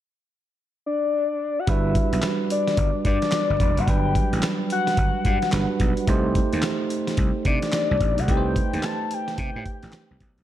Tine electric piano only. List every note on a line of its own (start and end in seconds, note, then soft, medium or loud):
1.67 3.83 G3 medium
1.67 3.84 D4 medium
1.67 3.84 F#4 medium
1.67 3.85 B4 medium
3.87 5.50 F#3 medium
3.87 5.49 G3 medium
3.87 5.50 D4 medium
3.87 5.50 B4 medium
5.53 6.08 G3 medium
5.53 6.08 D4 medium
5.53 6.08 F#4 medium
5.53 6.08 B4 medium
6.07 8.24 A3 medium
6.07 8.24 D#4 medium
6.07 8.25 G4 medium
6.07 8.25 C5 medium
8.28 10.43 A3 medium
8.28 10.43 D#4 medium
8.28 10.43 G4 medium
8.28 8.37 B4 medium
8.37 10.43 C5 medium